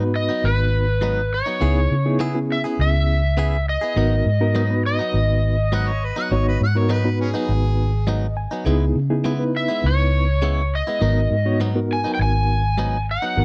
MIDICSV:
0, 0, Header, 1, 6, 480
1, 0, Start_track
1, 0, Key_signature, 5, "minor"
1, 0, Tempo, 588235
1, 1318, Time_signature, 4, 2, 24, 8
1, 10973, End_track
2, 0, Start_track
2, 0, Title_t, "Electric slide guitar"
2, 0, Program_c, 0, 29
2, 128, Note_on_c, 0, 75, 89
2, 366, Note_on_c, 0, 71, 85
2, 370, Note_off_c, 0, 75, 0
2, 1095, Note_on_c, 0, 73, 80
2, 1103, Note_off_c, 0, 71, 0
2, 1773, Note_off_c, 0, 73, 0
2, 2057, Note_on_c, 0, 76, 92
2, 2119, Note_off_c, 0, 76, 0
2, 2295, Note_on_c, 0, 76, 91
2, 3010, Note_off_c, 0, 76, 0
2, 3013, Note_on_c, 0, 75, 88
2, 3959, Note_off_c, 0, 75, 0
2, 3968, Note_on_c, 0, 75, 84
2, 5367, Note_off_c, 0, 75, 0
2, 7805, Note_on_c, 0, 76, 90
2, 8045, Note_off_c, 0, 76, 0
2, 8048, Note_on_c, 0, 73, 91
2, 8774, Note_on_c, 0, 75, 80
2, 8781, Note_off_c, 0, 73, 0
2, 9450, Note_off_c, 0, 75, 0
2, 9733, Note_on_c, 0, 80, 90
2, 9908, Note_off_c, 0, 80, 0
2, 9911, Note_on_c, 0, 79, 72
2, 9959, Note_off_c, 0, 79, 0
2, 9972, Note_on_c, 0, 80, 99
2, 10650, Note_off_c, 0, 80, 0
2, 10698, Note_on_c, 0, 78, 92
2, 10973, Note_off_c, 0, 78, 0
2, 10973, End_track
3, 0, Start_track
3, 0, Title_t, "Harmonica"
3, 0, Program_c, 1, 22
3, 4682, Note_on_c, 1, 78, 82
3, 4809, Note_on_c, 1, 73, 75
3, 4821, Note_off_c, 1, 78, 0
3, 4930, Note_on_c, 1, 71, 75
3, 4942, Note_off_c, 1, 73, 0
3, 5037, Note_off_c, 1, 71, 0
3, 5045, Note_on_c, 1, 78, 82
3, 5162, Note_on_c, 1, 73, 72
3, 5175, Note_off_c, 1, 78, 0
3, 5273, Note_off_c, 1, 73, 0
3, 5291, Note_on_c, 1, 71, 77
3, 5392, Note_off_c, 1, 71, 0
3, 5410, Note_on_c, 1, 78, 87
3, 5529, Note_on_c, 1, 73, 75
3, 5542, Note_off_c, 1, 78, 0
3, 5632, Note_off_c, 1, 73, 0
3, 5647, Note_on_c, 1, 71, 80
3, 5873, Note_off_c, 1, 71, 0
3, 5881, Note_on_c, 1, 61, 63
3, 5881, Note_on_c, 1, 68, 90
3, 5952, Note_off_c, 1, 61, 0
3, 6808, Note_off_c, 1, 68, 0
3, 10973, End_track
4, 0, Start_track
4, 0, Title_t, "Reed electric piano"
4, 0, Program_c, 2, 4
4, 0, Note_on_c, 2, 59, 66
4, 2, Note_on_c, 2, 63, 67
4, 2, Note_on_c, 2, 66, 64
4, 4, Note_on_c, 2, 71, 78
4, 696, Note_off_c, 2, 59, 0
4, 697, Note_off_c, 2, 63, 0
4, 697, Note_off_c, 2, 66, 0
4, 697, Note_off_c, 2, 71, 0
4, 1315, Note_on_c, 2, 59, 66
4, 1316, Note_on_c, 2, 63, 59
4, 1319, Note_on_c, 2, 64, 59
4, 1319, Note_on_c, 2, 68, 73
4, 1578, Note_off_c, 2, 59, 0
4, 1578, Note_off_c, 2, 63, 0
4, 1579, Note_off_c, 2, 64, 0
4, 1580, Note_off_c, 2, 68, 0
4, 1678, Note_on_c, 2, 59, 84
4, 1678, Note_on_c, 2, 63, 77
4, 1679, Note_on_c, 2, 64, 77
4, 1679, Note_on_c, 2, 68, 94
4, 1851, Note_off_c, 2, 59, 0
4, 1851, Note_off_c, 2, 63, 0
4, 1852, Note_off_c, 2, 64, 0
4, 1852, Note_off_c, 2, 68, 0
4, 1914, Note_on_c, 2, 59, 66
4, 1915, Note_on_c, 2, 61, 65
4, 1916, Note_on_c, 2, 64, 62
4, 1917, Note_on_c, 2, 68, 77
4, 2612, Note_off_c, 2, 59, 0
4, 2612, Note_off_c, 2, 61, 0
4, 2612, Note_off_c, 2, 64, 0
4, 2613, Note_off_c, 2, 68, 0
4, 3233, Note_on_c, 2, 59, 63
4, 3233, Note_on_c, 2, 63, 62
4, 3234, Note_on_c, 2, 66, 60
4, 3234, Note_on_c, 2, 70, 77
4, 3496, Note_off_c, 2, 59, 0
4, 3496, Note_off_c, 2, 63, 0
4, 3496, Note_off_c, 2, 66, 0
4, 3496, Note_off_c, 2, 70, 0
4, 3597, Note_on_c, 2, 59, 85
4, 3597, Note_on_c, 2, 63, 77
4, 3597, Note_on_c, 2, 66, 75
4, 3600, Note_on_c, 2, 70, 95
4, 3770, Note_off_c, 2, 59, 0
4, 3770, Note_off_c, 2, 63, 0
4, 3770, Note_off_c, 2, 66, 0
4, 3771, Note_off_c, 2, 70, 0
4, 3838, Note_on_c, 2, 59, 67
4, 3838, Note_on_c, 2, 71, 79
4, 3839, Note_on_c, 2, 66, 64
4, 3840, Note_on_c, 2, 63, 63
4, 4532, Note_off_c, 2, 59, 0
4, 4533, Note_off_c, 2, 63, 0
4, 4533, Note_off_c, 2, 66, 0
4, 4533, Note_off_c, 2, 71, 0
4, 5155, Note_on_c, 2, 59, 77
4, 5155, Note_on_c, 2, 63, 69
4, 5155, Note_on_c, 2, 73, 87
4, 5157, Note_on_c, 2, 66, 74
4, 5415, Note_off_c, 2, 63, 0
4, 5416, Note_off_c, 2, 59, 0
4, 5416, Note_off_c, 2, 66, 0
4, 5416, Note_off_c, 2, 73, 0
4, 5510, Note_on_c, 2, 63, 75
4, 5511, Note_on_c, 2, 59, 81
4, 5512, Note_on_c, 2, 70, 89
4, 5513, Note_on_c, 2, 66, 76
4, 5685, Note_off_c, 2, 63, 0
4, 5686, Note_off_c, 2, 59, 0
4, 5686, Note_off_c, 2, 66, 0
4, 5686, Note_off_c, 2, 70, 0
4, 5750, Note_on_c, 2, 59, 82
4, 5750, Note_on_c, 2, 66, 75
4, 5752, Note_on_c, 2, 63, 69
4, 5753, Note_on_c, 2, 71, 87
4, 6447, Note_off_c, 2, 59, 0
4, 6447, Note_off_c, 2, 66, 0
4, 6448, Note_off_c, 2, 63, 0
4, 6449, Note_off_c, 2, 71, 0
4, 6586, Note_on_c, 2, 75, 67
4, 6812, Note_off_c, 2, 75, 0
4, 6828, Note_on_c, 2, 80, 68
4, 7053, Note_off_c, 2, 80, 0
4, 7065, Note_on_c, 2, 59, 82
4, 7065, Note_on_c, 2, 63, 74
4, 7065, Note_on_c, 2, 64, 66
4, 7065, Note_on_c, 2, 68, 86
4, 7330, Note_off_c, 2, 59, 0
4, 7330, Note_off_c, 2, 63, 0
4, 7330, Note_off_c, 2, 64, 0
4, 7330, Note_off_c, 2, 68, 0
4, 7425, Note_on_c, 2, 63, 73
4, 7426, Note_on_c, 2, 59, 81
4, 7428, Note_on_c, 2, 64, 75
4, 7428, Note_on_c, 2, 68, 89
4, 7602, Note_off_c, 2, 59, 0
4, 7602, Note_off_c, 2, 63, 0
4, 7603, Note_off_c, 2, 64, 0
4, 7603, Note_off_c, 2, 68, 0
4, 7663, Note_on_c, 2, 59, 68
4, 7664, Note_on_c, 2, 63, 62
4, 7664, Note_on_c, 2, 64, 62
4, 7666, Note_on_c, 2, 71, 77
4, 8364, Note_off_c, 2, 59, 0
4, 8364, Note_off_c, 2, 63, 0
4, 8364, Note_off_c, 2, 64, 0
4, 8365, Note_off_c, 2, 71, 0
4, 8986, Note_on_c, 2, 59, 65
4, 8986, Note_on_c, 2, 66, 56
4, 8987, Note_on_c, 2, 63, 60
4, 8989, Note_on_c, 2, 70, 73
4, 9250, Note_off_c, 2, 59, 0
4, 9250, Note_off_c, 2, 66, 0
4, 9251, Note_off_c, 2, 63, 0
4, 9252, Note_off_c, 2, 70, 0
4, 9349, Note_on_c, 2, 59, 86
4, 9349, Note_on_c, 2, 63, 79
4, 9349, Note_on_c, 2, 66, 82
4, 9350, Note_on_c, 2, 73, 96
4, 9524, Note_off_c, 2, 59, 0
4, 9524, Note_off_c, 2, 63, 0
4, 9524, Note_off_c, 2, 66, 0
4, 9525, Note_off_c, 2, 73, 0
4, 9588, Note_on_c, 2, 59, 73
4, 9589, Note_on_c, 2, 66, 64
4, 9590, Note_on_c, 2, 63, 62
4, 9590, Note_on_c, 2, 70, 74
4, 10286, Note_off_c, 2, 59, 0
4, 10287, Note_off_c, 2, 66, 0
4, 10288, Note_off_c, 2, 63, 0
4, 10288, Note_off_c, 2, 70, 0
4, 10909, Note_on_c, 2, 63, 61
4, 10910, Note_on_c, 2, 66, 62
4, 10911, Note_on_c, 2, 59, 65
4, 10912, Note_on_c, 2, 70, 71
4, 10973, Note_off_c, 2, 59, 0
4, 10973, Note_off_c, 2, 63, 0
4, 10973, Note_off_c, 2, 66, 0
4, 10973, Note_off_c, 2, 70, 0
4, 10973, End_track
5, 0, Start_track
5, 0, Title_t, "Clean electric guitar"
5, 0, Program_c, 3, 27
5, 233, Note_on_c, 3, 63, 50
5, 244, Note_on_c, 3, 59, 44
5, 250, Note_on_c, 3, 54, 40
5, 378, Note_off_c, 3, 63, 0
5, 384, Note_off_c, 3, 59, 0
5, 387, Note_off_c, 3, 54, 0
5, 827, Note_on_c, 3, 44, 74
5, 832, Note_on_c, 3, 54, 69
5, 837, Note_on_c, 3, 59, 76
5, 839, Note_on_c, 3, 63, 74
5, 979, Note_off_c, 3, 44, 0
5, 982, Note_off_c, 3, 54, 0
5, 984, Note_off_c, 3, 59, 0
5, 985, Note_off_c, 3, 63, 0
5, 1191, Note_on_c, 3, 63, 49
5, 1201, Note_on_c, 3, 59, 43
5, 1211, Note_on_c, 3, 54, 39
5, 1302, Note_off_c, 3, 59, 0
5, 1307, Note_on_c, 3, 49, 68
5, 1312, Note_off_c, 3, 63, 0
5, 1312, Note_on_c, 3, 59, 80
5, 1318, Note_on_c, 3, 64, 77
5, 1321, Note_on_c, 3, 68, 74
5, 1322, Note_off_c, 3, 54, 0
5, 1459, Note_off_c, 3, 49, 0
5, 1462, Note_off_c, 3, 59, 0
5, 1465, Note_off_c, 3, 64, 0
5, 1466, Note_off_c, 3, 68, 0
5, 1790, Note_on_c, 3, 49, 76
5, 1794, Note_on_c, 3, 59, 83
5, 1798, Note_on_c, 3, 64, 91
5, 1803, Note_on_c, 3, 68, 90
5, 1940, Note_off_c, 3, 49, 0
5, 1943, Note_off_c, 3, 59, 0
5, 1945, Note_off_c, 3, 64, 0
5, 1947, Note_off_c, 3, 68, 0
5, 2155, Note_on_c, 3, 68, 51
5, 2164, Note_on_c, 3, 64, 46
5, 2172, Note_on_c, 3, 59, 42
5, 2299, Note_off_c, 3, 68, 0
5, 2303, Note_off_c, 3, 64, 0
5, 2307, Note_off_c, 3, 59, 0
5, 2751, Note_on_c, 3, 49, 72
5, 2754, Note_on_c, 3, 59, 77
5, 2760, Note_on_c, 3, 64, 77
5, 2764, Note_on_c, 3, 68, 81
5, 2900, Note_off_c, 3, 49, 0
5, 2902, Note_off_c, 3, 59, 0
5, 2905, Note_off_c, 3, 64, 0
5, 2907, Note_off_c, 3, 68, 0
5, 3112, Note_on_c, 3, 68, 46
5, 3122, Note_on_c, 3, 64, 40
5, 3129, Note_on_c, 3, 59, 39
5, 3230, Note_off_c, 3, 59, 0
5, 3232, Note_off_c, 3, 68, 0
5, 3232, Note_on_c, 3, 44, 66
5, 3237, Note_off_c, 3, 64, 0
5, 3238, Note_on_c, 3, 54, 71
5, 3240, Note_on_c, 3, 59, 82
5, 3245, Note_on_c, 3, 63, 78
5, 3381, Note_off_c, 3, 44, 0
5, 3384, Note_off_c, 3, 54, 0
5, 3385, Note_off_c, 3, 59, 0
5, 3387, Note_off_c, 3, 63, 0
5, 3710, Note_on_c, 3, 44, 78
5, 3714, Note_on_c, 3, 54, 84
5, 3719, Note_on_c, 3, 59, 81
5, 3720, Note_on_c, 3, 63, 86
5, 3860, Note_off_c, 3, 44, 0
5, 3862, Note_off_c, 3, 54, 0
5, 3864, Note_off_c, 3, 59, 0
5, 3865, Note_off_c, 3, 63, 0
5, 4071, Note_on_c, 3, 63, 50
5, 4084, Note_on_c, 3, 59, 47
5, 4090, Note_on_c, 3, 54, 45
5, 4216, Note_off_c, 3, 63, 0
5, 4222, Note_off_c, 3, 59, 0
5, 4225, Note_off_c, 3, 54, 0
5, 4668, Note_on_c, 3, 44, 75
5, 4673, Note_on_c, 3, 54, 85
5, 4676, Note_on_c, 3, 59, 88
5, 4679, Note_on_c, 3, 63, 84
5, 4818, Note_off_c, 3, 44, 0
5, 4820, Note_off_c, 3, 54, 0
5, 4822, Note_off_c, 3, 59, 0
5, 4823, Note_off_c, 3, 63, 0
5, 5029, Note_on_c, 3, 63, 54
5, 5038, Note_on_c, 3, 59, 49
5, 5043, Note_on_c, 3, 54, 43
5, 5174, Note_off_c, 3, 63, 0
5, 5178, Note_off_c, 3, 59, 0
5, 5181, Note_off_c, 3, 54, 0
5, 5623, Note_on_c, 3, 44, 80
5, 5629, Note_on_c, 3, 54, 85
5, 5631, Note_on_c, 3, 59, 84
5, 5637, Note_on_c, 3, 63, 87
5, 5775, Note_off_c, 3, 44, 0
5, 5778, Note_off_c, 3, 54, 0
5, 5779, Note_off_c, 3, 59, 0
5, 5782, Note_off_c, 3, 63, 0
5, 5988, Note_on_c, 3, 63, 56
5, 5998, Note_on_c, 3, 59, 57
5, 6006, Note_on_c, 3, 54, 49
5, 6133, Note_off_c, 3, 63, 0
5, 6138, Note_off_c, 3, 59, 0
5, 6142, Note_off_c, 3, 54, 0
5, 6585, Note_on_c, 3, 44, 80
5, 6589, Note_on_c, 3, 54, 82
5, 6594, Note_on_c, 3, 59, 80
5, 6598, Note_on_c, 3, 63, 87
5, 6735, Note_off_c, 3, 44, 0
5, 6738, Note_off_c, 3, 54, 0
5, 6740, Note_off_c, 3, 59, 0
5, 6742, Note_off_c, 3, 63, 0
5, 6945, Note_on_c, 3, 63, 54
5, 6955, Note_on_c, 3, 59, 46
5, 6961, Note_on_c, 3, 54, 44
5, 7060, Note_off_c, 3, 59, 0
5, 7060, Note_on_c, 3, 49, 76
5, 7063, Note_off_c, 3, 54, 0
5, 7067, Note_off_c, 3, 63, 0
5, 7067, Note_on_c, 3, 56, 83
5, 7069, Note_on_c, 3, 59, 83
5, 7073, Note_on_c, 3, 64, 75
5, 7213, Note_off_c, 3, 49, 0
5, 7216, Note_off_c, 3, 56, 0
5, 7218, Note_off_c, 3, 59, 0
5, 7220, Note_off_c, 3, 64, 0
5, 7542, Note_on_c, 3, 49, 76
5, 7546, Note_on_c, 3, 56, 79
5, 7550, Note_on_c, 3, 59, 88
5, 7554, Note_on_c, 3, 64, 95
5, 7694, Note_off_c, 3, 49, 0
5, 7696, Note_off_c, 3, 56, 0
5, 7698, Note_off_c, 3, 59, 0
5, 7700, Note_off_c, 3, 64, 0
5, 7902, Note_on_c, 3, 64, 52
5, 7913, Note_on_c, 3, 59, 43
5, 7918, Note_on_c, 3, 56, 42
5, 8050, Note_off_c, 3, 64, 0
5, 8055, Note_off_c, 3, 59, 0
5, 8058, Note_off_c, 3, 56, 0
5, 8503, Note_on_c, 3, 49, 73
5, 8507, Note_on_c, 3, 56, 80
5, 8511, Note_on_c, 3, 59, 79
5, 8516, Note_on_c, 3, 64, 76
5, 8654, Note_off_c, 3, 49, 0
5, 8656, Note_off_c, 3, 56, 0
5, 8658, Note_off_c, 3, 59, 0
5, 8661, Note_off_c, 3, 64, 0
5, 8871, Note_on_c, 3, 64, 46
5, 8879, Note_on_c, 3, 59, 48
5, 8887, Note_on_c, 3, 56, 40
5, 8981, Note_off_c, 3, 59, 0
5, 8982, Note_off_c, 3, 56, 0
5, 8982, Note_on_c, 3, 44, 69
5, 8985, Note_on_c, 3, 54, 72
5, 8989, Note_off_c, 3, 64, 0
5, 8991, Note_on_c, 3, 59, 80
5, 8993, Note_on_c, 3, 63, 80
5, 9134, Note_off_c, 3, 44, 0
5, 9135, Note_off_c, 3, 54, 0
5, 9138, Note_off_c, 3, 59, 0
5, 9139, Note_off_c, 3, 63, 0
5, 9466, Note_on_c, 3, 44, 81
5, 9471, Note_on_c, 3, 54, 88
5, 9475, Note_on_c, 3, 59, 77
5, 9478, Note_on_c, 3, 63, 86
5, 9616, Note_off_c, 3, 44, 0
5, 9619, Note_off_c, 3, 54, 0
5, 9620, Note_off_c, 3, 59, 0
5, 9622, Note_off_c, 3, 63, 0
5, 9827, Note_on_c, 3, 63, 55
5, 9838, Note_on_c, 3, 59, 42
5, 9845, Note_on_c, 3, 54, 42
5, 9972, Note_off_c, 3, 63, 0
5, 9978, Note_off_c, 3, 59, 0
5, 9981, Note_off_c, 3, 54, 0
5, 10425, Note_on_c, 3, 44, 75
5, 10429, Note_on_c, 3, 54, 75
5, 10434, Note_on_c, 3, 59, 80
5, 10437, Note_on_c, 3, 63, 78
5, 10575, Note_off_c, 3, 44, 0
5, 10578, Note_off_c, 3, 54, 0
5, 10580, Note_off_c, 3, 59, 0
5, 10581, Note_off_c, 3, 63, 0
5, 10790, Note_on_c, 3, 63, 50
5, 10799, Note_on_c, 3, 59, 45
5, 10806, Note_on_c, 3, 54, 41
5, 10934, Note_off_c, 3, 63, 0
5, 10939, Note_off_c, 3, 59, 0
5, 10942, Note_off_c, 3, 54, 0
5, 10973, End_track
6, 0, Start_track
6, 0, Title_t, "Fingered electric bass"
6, 0, Program_c, 4, 33
6, 0, Note_on_c, 4, 44, 71
6, 233, Note_off_c, 4, 44, 0
6, 357, Note_on_c, 4, 32, 92
6, 1151, Note_off_c, 4, 32, 0
6, 1319, Note_on_c, 4, 37, 91
6, 1517, Note_off_c, 4, 37, 0
6, 1560, Note_on_c, 4, 49, 76
6, 2154, Note_off_c, 4, 49, 0
6, 2278, Note_on_c, 4, 37, 94
6, 3070, Note_off_c, 4, 37, 0
6, 3234, Note_on_c, 4, 32, 91
6, 3433, Note_off_c, 4, 32, 0
6, 3474, Note_on_c, 4, 44, 84
6, 4069, Note_off_c, 4, 44, 0
6, 4192, Note_on_c, 4, 32, 92
6, 4986, Note_off_c, 4, 32, 0
6, 5150, Note_on_c, 4, 32, 89
6, 5349, Note_off_c, 4, 32, 0
6, 5391, Note_on_c, 4, 44, 77
6, 5987, Note_off_c, 4, 44, 0
6, 6110, Note_on_c, 4, 32, 96
6, 6904, Note_off_c, 4, 32, 0
6, 7067, Note_on_c, 4, 37, 87
6, 7267, Note_off_c, 4, 37, 0
6, 7306, Note_on_c, 4, 49, 76
6, 7903, Note_off_c, 4, 49, 0
6, 8027, Note_on_c, 4, 37, 97
6, 8822, Note_off_c, 4, 37, 0
6, 8987, Note_on_c, 4, 32, 90
6, 9188, Note_off_c, 4, 32, 0
6, 9227, Note_on_c, 4, 44, 75
6, 9824, Note_off_c, 4, 44, 0
6, 9948, Note_on_c, 4, 32, 97
6, 10744, Note_off_c, 4, 32, 0
6, 10913, Note_on_c, 4, 32, 92
6, 10973, Note_off_c, 4, 32, 0
6, 10973, End_track
0, 0, End_of_file